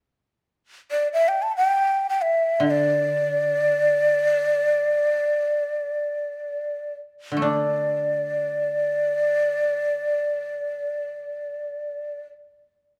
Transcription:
0.91 D5
1.13 E5
1.28 G5
1.42 A5
1.57 G5
2.09 G5
2.23 E5
2.60 D3
2.67 D5 E5
7.32 D3
7.37 A3
7.42 D4 D5

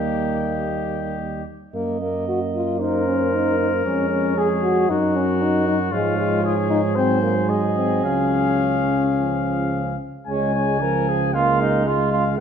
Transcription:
Already playing: D#2 G3 A#3 G4 D#5
1.74 F#2 A#3 D#5
2.02 A#3
2.28 F#4
2.54 F4
2.80 D#4 A#4 C5
3.07 C#4
3.33 D#4
3.59 D#4
3.85 F2 G#3 C#4 C#5
4.10 C#4
4.37 G#4
4.63 F#4
4.89 F#2 F#3 D#4 F#4 A#4
5.16 C#4
5.42 D#4
5.67 D#4
5.92 G#2 F3 G#3 F4 C#5
6.18 G#3
6.43 F4 G#4
6.69 D#4
6.95 F#3 C4 G#4 C5
7.23 A#3
7.49 G#3 D#5
7.76 C4
8.04 C#2 C#4 F5
9.16 F3
10.27 C#2 G#3 C#4 G#5
10.54 C#4
10.81 F3 A#4
11.09 G#4
11.34 G#3 A#3 F4 F5
11.61 D#4
11.86 G#3 F4 F5
12.12 F4

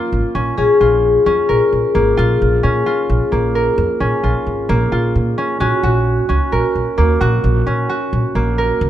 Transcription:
Already playing: A#3 C#4 F4 A#4
0.12 G#1
0.35 A#1 C#4
0.58 A#1 C#4 G#4
0.81 A#1 F4
1.26 F2 C#4
1.49 A#1 A#4
1.73 A#1
1.95 G#1 A#3
2.17 A#1 F4
2.42 A#1
2.63 A#2 C#4
2.86 F4
3.10 A#1
3.32 A#1 A#3
3.55 A#4
3.78 F2
4.00 A#1 C#4
4.23 A#1 F4
4.47 G#1
4.69 A#1 A#3
4.92 A#1 F4
5.15 A#2
5.38 C#4
5.60 A#1 C#4 F#4
5.83 A#1 F#4
6.29 C#2 C#4
6.52 A#1 A#4
6.75 A#1
6.98 D#2 A#3
7.21 A#1 F#4
7.44 A#1
7.66 A#2 C#4
7.89 F#4
8.13 A#1
8.35 A#1 A#3
8.58 A#4
8.81 C#2

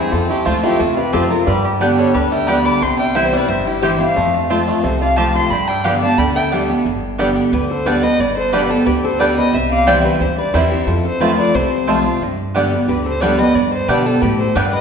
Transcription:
Already playing: C4 E4 G4 G#4
0.12 F2 C4 F4 A4
0.30 A3 E4 G4
0.45 D2 F3 A3 C4 F4 C5 A5
0.63 A3 C4 E4 F4 G4
0.79 E2 C3 C4 F4 A4
0.96 F4 G4 B4
1.13 F2 F3 A3 C4 F4 G4 A4 C5 A5
1.29 C4 F4 A#4
1.46 G2 G3 G4 B4
1.65 G4
1.80 D3 G3 B3 D4 G4 D5 G5
1.98 G3 A4 C#5
2.14 D2 D3 G4 B4 D5
2.32 G3 E5 G5
2.47 D3 G3 B3 G4 D5 G5 B5
2.65 D4 B5 D6
2.81 C2 C3 C4 G5 C6
2.99 G3 E5 G5
3.15 E3 G3 C4 E4 C5 E5 G5
3.26 A4 C5
3.33 G3 C4 E4
3.37 B4 D5
3.49 G1 G2 C4 C5 E5
3.67 E4 G4
3.82 E3 G3 C4 E4 G4 C5 G5
4.00 C4 E4 C5 F5
4.16 F2 A3
4.34 C4
4.50 F3 A3 C4 F4 C5 A5
4.68 A3
4.83 C2 C3 C4 A4 C5
5.00 F4 D5 F5
5.16 F3 A3 C4 F4 G4 C5 F5 A5
5.35 C4 A5 C6
5.50 G2 D4 G5 B5
5.68 G3 E5 G5
5.84 D3 G3 B3 G4 D5 F5 G5
6.02 B3 D4 G4 F5 A5
6.18 D2 D3 G3 G5 B5
6.35 B3 E5 G5
6.52 D3 G3 B3 D4 G4 D5 G5
6.70 B3 G4
6.85 G1 G2
7.18 D3 G3 B3 D4 G4 D5 G5
7.53 D2 D3 G4 B4
7.71 A4 C5
7.86 D3 G3 B3 D4 G4 B4 D5 G5
8.03 B3 G4 B4 D#5
8.19 G1 G2 B4 D5
8.37 A4 C5
8.52 D3 G3 B3 D4 G4 B4 D5 G5
8.70 B3 F4 G4 A4
8.86 D2 D3 G4 B4
9.04 A4 C5
9.19 D3 G3 B3 D4 G4 B4 D5 G5
9.37 B3 G4 B4 D#5
9.53 C2 C3 C5 E5
9.71 D5 F5
9.86 E3 G3 C4 E4 G4 C5 D5 G5
10.05 G4 B4
10.20 D2 G2 G4 C5
10.38 B4 D5
10.54 E2 E3 G3 C4 E4 G4 B4 C5 G5
10.71 E4 G4
10.87 F2 F4 A4
11.05 A4 C5
11.20 F3 A3 C4 F4 B4 C5 A5
11.38 B4 D5
11.55 C2 C3 A4 C5
11.87 F3 A3 C4 F4 C5 A5
12.06 C4 F4
12.21 G2
12.55 D3 G3 B3 D4 G4 D5 G5
12.73 B3 G4
12.88 D2 D3 G4 B4
13.06 A4 C5
13.21 D3 G3 B3 D4 G4 B4 D5 G5
13.38 B3 G4 B4 D#5
13.55 G2 B4 D5
13.72 A4 C5
13.88 B2 D3 G3 B3 D4 G4 B4 D5 G5
14.05 B3 F4 G4 A4
14.21 A2 G4 B4
14.39 A4 C5
14.55 G2 G3 B3 D4 G4 B4 D5 G5
14.73 B4 D#5

